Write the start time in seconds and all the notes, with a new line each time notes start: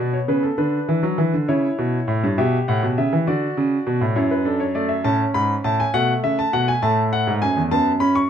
Already playing: B3 D5
0.00 B2
0.13 C#5
0.28 C#3 B4
0.43 A4
0.58 D3 D4 B4
0.89 E3
1.03 F#3
1.18 E3
1.34 D3
1.48 C#3 E4 C#5
1.78 B2
2.08 A2
2.24 G2
2.38 B2 G4 E5
2.68 A2 F#5
2.83 B2
2.98 C#3 E5
3.13 E3
3.27 D3 F#4 D5
3.57 C#3
3.87 B2
4.01 A2
4.16 F#2 E4 C#5
4.31 B4
4.45 D4 A4
4.60 C#5
4.75 A3 D5
4.89 E5
5.04 A2 C#4 A5
5.34 G#2 B5
5.64 A2 A5
5.80 G#5
5.94 B2 A3 F#5
6.24 C#3 E5
6.39 A5
6.53 B2 F#5
6.68 G#5
6.82 A2 A3 A5
7.13 F#5
7.27 G#2
7.42 F#2 G#5
7.57 E2
7.71 F#2 B3 A5
8.00 C#4 B5
8.15 C#6